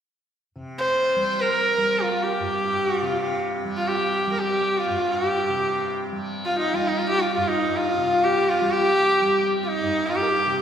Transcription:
0.56 C3
0.78 C5
0.87 C5
1.16 G3
1.41 A#4
1.50 A#4
1.78 G3
2.02 F4
2.12 F4
2.23 G4
2.32 G4
2.40 G2
2.86 F#4
3.02 C3 F4
3.65 G3
3.77 F4
3.85 F4 G4
3.96 G4
4.27 G3
4.32 A#4
4.39 G4
4.50 G4
4.78 F4
4.88 G2 F4
5.12 F#4
5.22 G4
5.27 G4
5.49 C3
6.12 G3
6.45 F4
6.55 D#4 F4
6.70 G3 D#4
6.75 F4
6.87 D#4
6.98 F4
7.09 F4 G4
7.20 F4
7.32 F4
7.37 G2
7.45 D#4 F4
7.59 D#4
7.77 F4
7.90 F4
7.98 C3
8.24 G4
8.34 G4
8.49 F4
8.60 G3 F4
8.71 G4
8.81 G4
9.21 G3
9.63 F4
9.68 D#4
9.82 G2 D#4
10.06 F4
10.15 G4
10.21 A#4
10.28 G4
10.47 C3

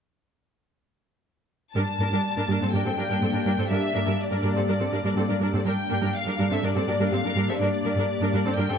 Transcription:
1.75 G2 G3 A#3 D4 G4 A#4 D5 A5
1.99 G2 A#3 D4 A#4
2.11 G2 G3 D4 A#4
2.36 G2 D4 A#4
2.48 G2 G3 D4 A#4
2.60 G2 C4 D4 A4
2.73 G2 G3 D4 A#4 G5
2.85 G2 C4 G4 A4
2.98 G2 D4 G4 A#4
3.10 G2 G3 D4 A#4
3.22 G2 C4 G4 A4
3.34 G2 D4 A#4
3.46 G2 G3 D4 A#4
3.58 G2 A#3 C4 A4
3.70 G2 G3 D4 A#4 E5
3.94 G2 A#3 D4 A#4
4.06 G2 G3 D4 A#4
4.21 D5
4.31 G2 D4 A#4
4.43 G2 G3 D4 A#4
4.55 G2 C4 D4 A4
4.68 G2 G3 D4 A#4
4.80 G2 C4 G4 A4
4.92 G2 D4 G4 A#4
5.04 G2 G3 D4 A#4
5.16 G2 C4 G4 A4
5.28 G2 D4 A#4
5.40 G2 G3 D4 A#4
5.53 G2 A#3 C4 A4
5.65 G2 G3 A#3 D4 G4 A#4 D5 G5
5.90 G2 A#3 D4 A#4
6.02 G2 G3 D4 A#4
6.15 F5
6.27 G2 D4 A#4
6.39 G2 G3 D4 A#4
6.51 G2 C4 D4 A4 E5
6.63 G2 G3 D4 A#4 D5
6.75 G2 C4 G4 A4
6.87 G2 D4 G4 A#4
6.99 G2 G3 D4 A#4
7.12 G2 C4 G4 A4 F5
7.24 G2 D4 A#4
7.35 G2 G3 D4 A#4
7.47 G2 A#3 C4 A4 E5
7.59 G2 G3 D4 A#4 D5
7.84 G2 A#3 D4 A#4
7.96 G2 G3 D4 A#4
8.21 G2 D4 A#4
8.33 G2 G3 D4 A#4
8.45 G2 C4 D4 A4
8.57 G2 G3 D4 A#4 G5
8.69 G2 C4 G4 A4

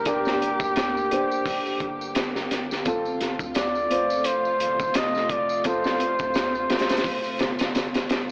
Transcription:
Already playing: G1 D3 A#3 D4 G4 C5
0.05 D4 G4 A#4, kick, closed hi-hat, tambourine
0.25 snare, tambourine
0.42 closed hi-hat
0.60 D2, kick, tambourine
0.76 snare, closed hi-hat, tambourine
0.97 tambourine
1.11 D4 G4 C5, closed hi-hat
1.31 tambourine
1.46 kick, open hi-hat, tambourine
1.66 tambourine
1.80 G1, kick, closed hi-hat
2.01 tambourine
2.15 snare, closed hi-hat, tambourine
2.35 snare, tambourine
2.51 G1, snare, closed hi-hat
2.71 snare, tambourine
2.85 C3 A3 C4 F4 A4, kick, closed hi-hat, tambourine
3.05 tambourine
3.21 snare, closed hi-hat
3.39 D2, kick, tambourine
3.54 D5, snare, closed hi-hat, tambourine
3.75 tambourine
3.89 C4 F4 C5, closed hi-hat
4.10 tambourine
4.24 C5, closed hi-hat, tambourine
4.45 tambourine
4.60 G1, closed hi-hat
4.79 kick, tambourine
4.94 F1 D#5, snare, closed hi-hat, tambourine
5.15 snare, tambourine
5.29 D5, kick, closed hi-hat
5.49 tambourine
5.64 C4 F4 A4 C5, kick, closed hi-hat, tambourine
5.84 snare, tambourine
6.00 closed hi-hat
6.19 D2, kick, tambourine
6.34 snare, closed hi-hat, tambourine
6.55 tambourine
6.70 C4 F4 C5, snare, closed hi-hat
6.79 snare, closed hi-hat
6.89 snare, closed hi-hat, tambourine
6.97 snare, closed hi-hat
7.04 kick, open hi-hat, tambourine
7.24 tambourine
7.39 G1, snare, closed hi-hat
7.59 snare, closed hi-hat, tambourine
7.75 snare, closed hi-hat, tambourine
7.94 snare, closed hi-hat, tambourine
8.09 G1, snare, closed hi-hat

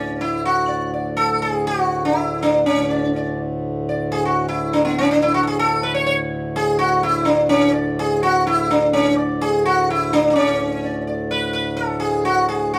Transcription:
Already playing: D2 A2 C#4 D5
0.21 E4
0.45 F#4
0.68 D5
0.94 D5
1.17 A4
1.42 G#4
1.67 F#4
2.05 E4
2.43 D4
2.66 D2 A2 C#4
2.90 D5
3.16 D5
3.89 D5
4.12 G#4
4.25 F#4
4.48 E4
4.73 D4
4.85 B3
4.98 C#4
5.11 D4
5.22 E4
5.34 F#4
5.43 A4
5.47 G#4
5.59 A4
5.83 B4
5.94 C#5
6.06 C#5
6.56 G#4
6.79 F#4
7.03 E4
7.25 D4
7.49 C#4
7.73 D5
7.99 G#4
8.23 F#4
8.47 E4
8.71 D4
8.93 C#4
9.18 D5
9.41 G#4
9.65 F#4
9.90 E4
10.13 D4
10.30 D4
10.35 D2 A2 C#4 D5
10.84 D5
11.07 D5
11.31 B4
11.53 B4
11.77 A4
12.00 G#4
12.25 F#4
12.49 G#4
12.74 F#4

